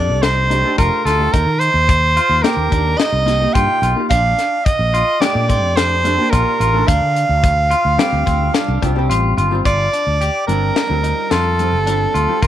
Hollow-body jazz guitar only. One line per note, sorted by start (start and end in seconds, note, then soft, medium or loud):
0.00 0.46 A3 medium
0.00 0.46 D4 medium
0.00 0.46 G4 medium
0.50 0.63 A3 medium
0.50 0.63 D4 medium
0.50 0.64 G4 medium
0.64 1.17 A3 medium
0.64 1.17 D4 medium
0.64 1.17 G4 medium
1.19 1.33 A3 medium
1.19 1.34 D4 medium
1.19 1.34 G4 medium
2.44 3.23 A#3 medium
2.44 3.23 D#4 medium
2.44 3.24 G4 medium
3.26 3.39 A#3 medium
3.26 3.40 D#4 medium
3.26 3.40 G4 medium
3.40 3.94 A#3 medium
3.40 3.94 D#4 medium
3.40 3.94 G4 medium
3.96 4.10 A#3 medium
3.96 4.11 D#4 medium
3.96 4.11 G4 medium
5.21 6.00 A3 medium
5.21 6.01 D4 medium
5.21 6.01 G4 medium
6.04 6.17 A3 medium
6.04 6.17 D4 medium
6.04 6.18 G4 medium
6.18 6.71 A#3 medium
6.18 6.71 D4 medium
6.18 6.72 G4 medium
6.74 6.88 A3 medium
6.74 6.88 D4 medium
6.74 6.89 A4 medium
7.98 8.78 G3 medium
7.98 8.78 C4 medium
7.98 8.78 F4 medium
8.82 8.94 G3 medium
8.82 8.95 C4 medium
8.82 8.96 F4 medium
8.95 9.48 G3 medium
8.95 9.49 C4 medium
8.95 9.49 G4 loud
9.51 9.65 G3 medium
9.51 9.65 C4 medium
9.51 9.66 F4 medium
10.48 10.88 G3 medium
10.48 10.88 C4 medium
10.48 10.88 F4 medium
10.89 11.55 G3 medium
10.89 11.56 C4 medium
10.89 11.56 F4 medium
11.59 11.85 G3 medium
11.59 11.86 C4 medium
11.59 11.86 F4 medium
11.87 12.26 G3 medium
11.87 12.27 C4 medium
11.87 12.27 F4 medium
12.29 12.47 G3 medium
12.29 12.47 C4 medium
12.29 12.47 F4 medium